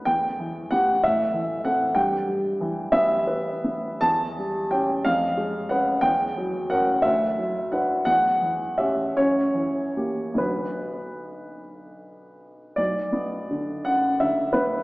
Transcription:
<<
  \new Staff \with { instrumentName = "Grand piano" } { \time 6/8 \key e \minor \tempo 4. = 58 g''4 fis''8 e''4 fis''8 | g''4. e''4. | \key b \minor a''4 g''8 eis''4 fis''8 | g''4 fis''8 e''4 fis''8 |
fis''4 e''8 cis''4. | b'4. r4. | d''4. fis''8 e''8 b'8 | }
  \new Staff \with { instrumentName = "Grand piano" } { \clef bass \time 6/8 \key e \minor e,8 e8 <b g'>8 a,8 e8 <c' a'>8 | g,8 g8 e8 b8 b'8 b8 | \key b \minor e,8 g8 <cis' g'>8 eis,8 gis8 <cis' b'>8 | e,8 fis8 <cis' ais'>8 d,8 fis8 <d' b'>8 |
e,8 e8 <cis' g'>8 fis,8 e8 <ais g'>8 | <b,, d b fis'>2. | b,,8 b8 d8 fis,8 d8 b8 | }
>>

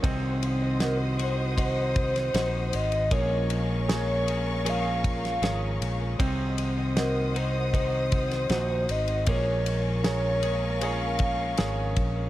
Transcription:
<<
  \new Staff \with { instrumentName = "String section" } { \time 4/4 \key bes \minor \tempo 4 = 78 <c'' ees'' ges'' ees'''>1 | <bes' f'' aes'' des'''>1 | <c'' ees'' ges'' ees'''>1 | <bes' f'' aes'' des'''>1 | }
  \new Staff \with { instrumentName = "Soft synth lead" } { \time 4/4 \key bes \minor r4 bes'8 c''8 c''4. ees''8 | des''4 des''4 f''8 f''4 r8 | r4 bes'8 c''8 c''4. ees''8 | des''4 des''4 f''8 f''4 r8 | }
  \new Staff \with { instrumentName = "Grand piano" } { \time 4/4 \key bes \minor c'4 <ges' c'' ees''>4 <ges' c'' ees''>4 <ges' c'' ees''>4 | bes4 <aes' bes' des''>4 <aes' bes' des''>4 <aes' bes' des''>4 | c'4 <ges' c'' ees''>4 <ges' c'' ees''>4 <ges' c'' ees''>4 | bes4 <aes' bes' des''>4 <aes' bes' des''>4 <aes' bes' des''>4 | }
  \new Staff \with { instrumentName = "Clean electric guitar" } { \time 4/4 \key bes \minor <c ees c' ees' ges'>4. <c' ees' ges'>8 <ees c' ees' ges'>4 <ees c' ees' ges'>4 | <bes, f aes des' aes'>4. <aes des' aes'>8 <f aes des' aes'>4 <f aes des' aes'>4 | <c ees c' ees' ges'>4. <c' ees' ges'>8 <ees c' ees' ges'>4 <ees c' ees' ges'>4 | <bes, f aes des' aes'>4. <aes des' aes'>8 <f aes des' aes'>4 <f aes des' aes'>4 | }
  \new Staff \with { instrumentName = "Fingered electric bass" } { \clef bass \time 4/4 \key bes \minor c,2. bes,,8 aes,,8 | bes,,2. aes,,8 bes,,8 | c,2. bes,,8 aes,,8 | bes,,2. aes,,8 bes,,8 | }
  \new DrumStaff \with { instrumentName = "Drums" } \drummode { \time 4/4 <bd cymr>8 cymr8 <cymr sn>8 cymr8 <bd cymr>8 <bd cymr>16 <cymr sn>16 <cymr sn>8 cymr16 cymr16 | <bd cymr>8 cymr8 <cymr sn>8 cymr8 cymr8 <bd cymr>16 <cymr sn>16 <cymr sn>8 cymr8 | <bd cymr>8 cymr8 <cymr sn>8 cymr8 <bd cymr>8 <bd cymr>16 <cymr sn>16 <cymr sn>8 cymr16 cymr16 | <bd cymr>8 cymr8 <cymr sn>8 cymr8 cymr8 <bd cymr>8 <cymr sn>8 <bd cymr>8 | }
>>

